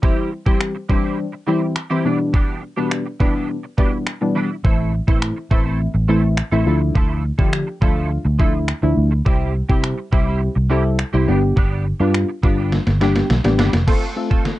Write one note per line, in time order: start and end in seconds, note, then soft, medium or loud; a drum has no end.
0.02 0.30 E3 medium
0.02 0.29 G3 medium
0.02 0.30 G3 medium
0.02 0.30 C4 medium
0.02 0.30 E4 loud
0.02 0.30 E4 medium
0.02 0.30 G4 medium
0.02 kick loud
0.31 muted clean electric guitar stroke soft
0.46 0.73 E3 medium
0.46 0.73 G3 medium
0.46 0.59 G3 soft
0.46 0.73 C4 medium
0.46 0.60 C4 medium
0.46 0.60 E4 medium
0.46 0.60 G4 medium
0.46 0.73 G4 medium
0.46 kick medium
0.60 finger snap loud
0.60 muted clean electric guitar stroke soft
0.75 muted clean electric guitar stroke medium
0.89 1.25 E3 medium
0.89 1.04 G3 medium
0.89 1.25 G3 medium
0.89 1.25 C4 medium
0.89 1.04 C4 medium
0.89 1.25 D4 loud
0.89 1.03 E4 medium
0.89 1.02 G4 loud
0.89 kick medium
1.03 1.17 G3 soft
1.03 1.17 C4 medium
1.03 1.18 E4 medium
1.03 1.18 G4 medium
1.18 muted clean electric guitar stroke soft
1.32 muted clean electric guitar stroke soft
1.47 1.74 E3 medium
1.47 1.65 G3 medium
1.47 1.74 G3 medium
1.47 1.61 C4 medium
1.47 1.74 C4 medium
1.47 1.74 E4 loud
1.47 1.61 E4 medium
1.47 1.60 G4 medium
1.61 muted clean electric guitar stroke medium
1.76 finger snap loud
1.76 muted clean electric guitar stroke soft
1.90 2.04 E3 medium
1.90 2.04 G3 medium
1.90 2.05 C4 medium
1.90 2.05 E4 medium
1.90 2.05 G4 medium
2.04 2.63 B2 medium
2.04 2.19 E3 medium
2.04 2.63 E3 medium
2.04 2.63 G3 medium
2.04 2.19 B3 medium
2.04 2.63 B3 medium
2.04 2.63 D4 medium
2.04 2.18 D4 medium
2.04 2.18 G4 medium
2.19 muted clean electric guitar stroke soft
2.33 2.60 E3 medium
2.33 2.60 B3 medium
2.33 2.61 D4 medium
2.33 2.61 G4 medium
2.33 kick loud
2.62 muted clean electric guitar stroke soft
2.77 3.04 B2 medium
2.77 3.04 E3 medium
2.77 2.90 E3 medium
2.77 3.04 G3 medium
2.77 3.04 B3 medium
2.77 2.91 B3 medium
2.77 2.91 D4 medium
2.77 3.04 D4 medium
2.77 2.91 G4 medium
2.91 finger snap loud
2.91 muted clean electric guitar stroke soft
3.06 muted clean electric guitar stroke soft
3.20 3.56 B2 medium
3.20 3.35 E3 medium
3.20 3.56 E3 medium
3.20 3.56 G3 medium
3.20 3.56 B3 medium
3.20 3.35 B3 medium
3.20 3.56 D4 loud
3.20 3.34 D4 medium
3.20 3.33 G4 medium
3.20 kick medium
3.34 3.48 E3 soft
3.34 3.48 B3 medium
3.34 3.49 D4 medium
3.34 3.49 G4 medium
3.49 muted clean electric guitar stroke soft
3.63 muted clean electric guitar stroke soft
3.78 4.05 B2 medium
3.78 3.96 E3 medium
3.78 4.05 E3 medium
3.78 4.05 G3 medium
3.78 4.05 B3 medium
3.78 3.92 B3 medium
3.78 4.05 D4 loud
3.78 3.92 D4 medium
3.78 3.91 G4 medium
3.78 kick medium
3.92 muted clean electric guitar stroke soft
4.07 finger snap loud
4.21 4.48 B2 medium
4.21 4.48 E3 medium
4.21 4.48 G3 medium
4.21 4.48 B3 medium
4.21 4.48 D4 medium
4.21 muted clean electric guitar stroke soft
4.35 4.54 E3 medium
4.35 4.50 B3 medium
4.35 4.49 D4 medium
4.35 4.49 G4 medium
4.50 muted clean electric guitar stroke soft
4.64 4.99 A1 medium
4.64 4.91 E3 medium
4.64 4.91 A3 medium
4.64 4.91 C4 medium
4.64 4.92 E4 medium
4.64 4.92 A4 medium
4.64 kick loud
4.93 muted clean electric guitar stroke soft
5.07 5.31 A2 medium
5.07 5.35 E3 medium
5.07 5.35 A3 medium
5.07 5.21 A3 medium
5.07 5.35 C4 medium
5.07 5.21 C4 medium
5.07 5.35 E4 medium
5.07 5.22 E4 medium
5.07 5.22 A4 medium
5.07 kick medium
5.22 finger snap loud
5.22 muted clean electric guitar stroke soft
5.36 muted clean electric guitar stroke soft
5.51 5.86 A1 medium
5.51 5.87 E3 medium
5.51 5.66 A3 medium
5.51 5.87 A3 medium
5.51 5.87 C4 medium
5.51 5.65 C4 medium
5.51 5.87 E4 medium
5.51 5.65 E4 medium
5.51 5.64 A4 medium
5.51 kick medium
5.65 5.78 A3 medium
5.65 5.79 C4 medium
5.65 5.79 E4 medium
5.65 5.80 A4 medium
5.80 muted clean electric guitar stroke soft
5.94 6.41 A1 medium
5.94 muted clean electric guitar stroke soft
6.08 6.36 E3 medium
6.08 6.27 A3 medium
6.08 6.36 A3 medium
6.08 6.36 C4 medium
6.08 6.23 C4 medium
6.08 6.36 E4 medium
6.08 6.23 E4 medium
6.08 6.22 A4 medium
6.23 muted clean electric guitar stroke soft
6.37 finger snap loud
6.37 muted clean electric guitar stroke soft
6.52 6.64 A1 medium
6.52 6.66 E3 medium
6.52 6.65 A3 medium
6.52 6.66 A3 medium
6.52 6.67 C4 medium
6.52 6.66 C4 medium
6.52 6.66 E4 medium
6.52 6.67 A4 medium
6.66 6.90 D2 loud
6.66 6.80 F3 medium
6.66 7.24 F3 medium
6.66 7.24 A3 medium
6.66 6.81 A3 medium
6.66 7.24 D4 medium
6.66 7.24 E4 loud
6.66 6.80 E4 medium
6.66 6.79 A4 medium
6.81 muted clean electric guitar stroke soft
6.95 7.30 D2 medium
6.95 7.22 F3 medium
6.95 7.22 A3 medium
6.95 7.22 E4 medium
6.95 7.23 A4 medium
6.95 kick loud
7.24 muted clean electric guitar stroke soft
7.38 7.62 D3 medium
7.38 7.65 F3 medium
7.38 7.51 F3 medium
7.38 7.65 A3 medium
7.38 7.52 A3 medium
7.38 7.66 D4 medium
7.38 7.52 E4 medium
7.38 7.66 G4 medium
7.38 7.53 A4 medium
7.38 kick medium
7.53 finger snap loud
7.67 muted clean electric guitar stroke soft
7.81 8.17 D2 medium
7.81 7.96 F3 medium
7.81 8.18 F3 medium
7.81 8.18 A3 medium
7.81 7.96 A3 medium
7.81 8.18 D4 medium
7.81 7.95 E4 medium
7.81 8.18 F4 loud
7.81 7.94 A4 medium
7.81 kick medium
7.96 8.09 F3 medium
7.96 8.10 A3 medium
7.96 8.10 E4 medium
7.96 8.10 A4 medium
8.10 muted clean electric guitar stroke soft
8.25 8.72 D2 medium
8.25 muted clean electric guitar stroke soft
8.39 8.57 F3 medium
8.39 8.66 F3 medium
8.39 8.66 A3 medium
8.39 8.54 A3 medium
8.39 8.66 D4 medium
8.39 8.67 E4 loud
8.39 8.53 E4 medium
8.39 8.52 A4 medium
8.39 kick medium
8.53 muted clean electric guitar stroke soft
8.68 finger snap loud
8.68 muted clean electric guitar stroke soft
8.82 8.94 D2 medium
8.82 9.10 F3 medium
8.82 9.10 A3 medium
8.82 9.10 D4 medium
8.82 9.10 E4 medium
8.82 muted clean electric guitar stroke soft
8.97 9.21 D2 medium
9.11 muted clean electric guitar stroke soft
9.25 9.52 G3 medium
9.25 9.53 G3 medium
9.25 9.53 C4 medium
9.25 9.53 E4 medium
9.25 9.53 G4 loud
9.25 9.53 G4 medium
9.25 kick loud
9.54 muted clean electric guitar stroke soft
9.69 9.93 C3 medium
9.69 9.96 G3 medium
9.69 9.82 G3 medium
9.69 9.96 C4 medium
9.69 9.83 C4 medium
9.69 9.83 E4 medium
9.69 9.96 E4 medium
9.69 9.83 G4 medium
9.69 9.96 G4 medium
9.69 kick medium
9.83 finger snap loud
9.83 muted clean electric guitar stroke soft
9.98 muted clean electric guitar stroke soft
10.12 10.47 C2 medium
10.12 10.27 G3 medium
10.12 10.48 G3 medium
10.12 10.48 C4 medium
10.12 10.27 C4 medium
10.12 10.48 E4 medium
10.12 10.26 E4 medium
10.12 10.49 G4 loud
10.12 10.25 G4 medium
10.12 kick medium
10.26 10.40 G3 medium
10.26 10.40 C4 medium
10.26 10.41 E4 medium
10.26 10.41 G4 medium
10.41 muted clean electric guitar stroke soft
10.55 11.02 C2 medium
10.55 muted clean electric guitar stroke medium
10.70 10.88 G3 medium
10.70 10.97 G3 medium
10.70 10.97 C4 medium
10.70 10.84 C4 medium
10.70 10.97 E4 medium
10.70 10.84 E4 medium
10.70 10.83 G4 loud
10.70 10.97 A4 loud
10.84 muted clean electric guitar stroke soft
10.99 finger snap loud
10.99 muted clean electric guitar stroke soft
11.13 11.25 C2 medium
11.13 11.27 G3 medium
11.13 11.26 G3 medium
11.13 11.28 C4 medium
11.13 11.28 E4 medium
11.13 11.28 G4 medium
11.13 11.27 G4 medium
11.27 11.51 G1 loud
11.27 11.42 G3 medium
11.27 11.86 G3 medium
11.27 11.86 B3 medium
11.27 11.42 B3 medium
11.27 11.86 D4 medium
11.27 11.42 D4 medium
11.27 11.86 G4 medium
11.27 11.41 G4 medium
11.42 muted clean electric guitar stroke soft
11.56 11.92 G1 loud
11.56 11.83 G3 medium
11.56 11.84 B3 medium
11.56 11.84 D4 medium
11.56 11.84 G4 loud
11.56 kick loud
11.85 muted clean electric guitar stroke soft
12.00 12.23 G2 medium
12.00 12.27 G3 medium
12.00 12.13 G3 medium
12.00 12.27 B3 medium
12.00 12.14 B3 medium
12.00 12.27 D4 medium
12.00 12.14 D4 medium
12.00 12.27 F4 loud
12.00 12.14 G4 medium
12.14 finger snap loud
12.14 muted clean electric guitar stroke soft
12.29 muted clean electric guitar stroke medium
12.43 12.78 G1 medium
12.43 12.58 G3 medium
12.43 12.79 G3 medium
12.43 12.79 B3 medium
12.43 12.57 B3 medium
12.43 12.79 D4 medium
12.43 12.57 D4 medium
12.43 12.79 F4 medium
12.43 12.56 G4 medium
12.43 kick medium
12.57 12.71 G3 soft
12.57 12.71 B3 medium
12.57 12.72 D4 medium
12.57 12.72 G4 medium
12.72 muted clean electric guitar stroke soft
12.72 snare medium
12.86 13.22 G1 medium
12.86 muted clean electric guitar stroke soft
12.86 snare soft
13.01 13.19 G3 medium
13.01 13.28 G3 medium
13.01 13.28 B3 medium
13.01 13.15 B3 medium
13.01 13.28 D4 medium
13.01 13.15 D4 medium
13.01 13.28 G4 loud
13.01 13.14 G4 medium
13.01 snare medium
13.15 muted clean electric guitar stroke soft
13.15 snare medium
13.30 13.43 B1 medium
13.30 snare medium
13.44 13.57 A1 medium
13.44 13.71 G3 medium
13.44 13.71 B3 medium
13.44 13.71 D4 medium
13.44 13.71 G4 medium
13.44 muted clean electric guitar stroke soft
13.44 snare medium
13.58 13.72 G1 medium
13.58 13.77 G3 medium
13.58 13.73 B3 medium
13.58 13.72 D4 loud
13.58 13.72 G4 medium
13.58 snare medium
13.73 13.86 F1 medium
13.73 snare medium
13.87 14.14 A3 medium
13.87 14.05 A3 medium
13.87 14.06 C4 medium
13.87 14.14 C4 medium
13.87 14.06 F4 medium
13.87 14.15 F4 medium
13.87 14.06 A4 loud
13.87 14.15 A4 medium
13.87 kick loud
13.87 snare soft
13.87 crash medium
14.16 14.52 A3 medium
14.16 14.52 C4 medium
14.16 14.52 F4 medium
14.16 14.52 A4 medium
14.16 muted clean electric guitar stroke soft
14.30 14.44 A3 medium
14.30 14.44 C4 medium
14.30 14.45 F4 medium
14.30 14.45 A4 medium
14.30 kick medium
14.45 muted clean electric guitar stroke soft
14.45 snare medium